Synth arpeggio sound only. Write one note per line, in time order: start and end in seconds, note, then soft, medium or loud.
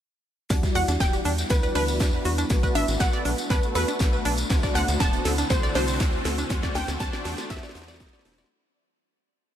0.50 0.58 D4 medium
0.75 0.86 F#4 medium
0.88 0.92 D4 medium
1.13 1.17 G4 medium
1.25 1.33 D4 loud
1.63 1.73 B4 loud
1.75 1.80 D4 medium
2.00 2.08 D4 medium
2.25 2.36 F#4 medium
2.38 2.42 D4 medium
2.63 2.67 B4 medium
2.75 2.83 D4 loud
3.13 3.23 D5 loud
3.25 3.30 D4 medium
3.50 3.58 D4 medium
3.75 3.86 A4 medium
3.88 3.92 D4 medium
4.13 4.17 B4 medium
4.25 4.33 D4 loud
4.63 4.73 D5 medium
4.75 4.80 D4 medium
5.00 5.08 D4 medium
5.25 5.36 A4 medium
5.38 5.42 D4 medium
5.63 5.73 D5 loud
5.75 5.80 D4 medium
6.00 6.08 D4 medium
6.25 6.36 A4 medium
6.38 6.42 D4 medium
6.63 6.73 D5 loud
6.75 6.80 D4 medium
7.13 7.23 D5 loud
7.25 7.30 D4 medium
7.63 7.73 D5 loud
7.88 7.98 D5 loud
8.13 8.23 D5 loud
8.38 8.48 D5 loud